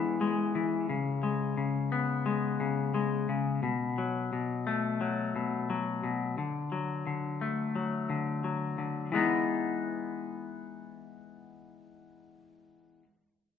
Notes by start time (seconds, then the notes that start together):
Already playing: E3 G#3 B3
0.21 G#3
0.55 E3
0.89 C#3
1.23 G#3
1.57 C#3
1.92 B3
2.26 G#3
2.60 C#3
2.94 G#3
3.29 C#3
3.63 B2
3.98 F#3
4.33 B2
4.67 A3
5.01 F#3
5.36 B2
5.70 F#3
6.04 B2
6.38 D3
6.72 F#3
7.07 D3
7.41 A3
7.76 F#3
8.10 D3
8.44 F#3
8.78 D3
9.12 E3 G#3 B3 D#4